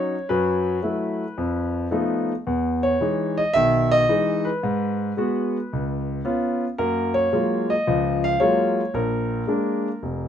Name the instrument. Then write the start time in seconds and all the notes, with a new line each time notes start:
grand piano
Already playing: F#3 C#4 D#4 C#5
0.29 F#2 F#3 B4
0.82 F#3 A3 E4
1.38 F2
1.91 F3 A3 B3 D#4
2.47 E2
2.83 C#5
3.01 E3 G#3 D#4
3.38 D#5
3.54 B1 D#3 E5
3.91 D#5
4.09 E3 G#3 D#4
4.45 B4
4.63 G#2
5.17 G#3 B3 F#4
5.73 C#2
6.25 B3 C#4 F4
6.78 F#2 A#3 A#4
7.14 C#5
7.33 F#3 G#3 A#3 F4
7.70 D#5
7.87 C#2 F3
8.24 F5
8.40 F#3 G#3 A#3 F4 C#5
8.94 A#1 A#4
9.47 G#3 A#3 D4
10.03 F1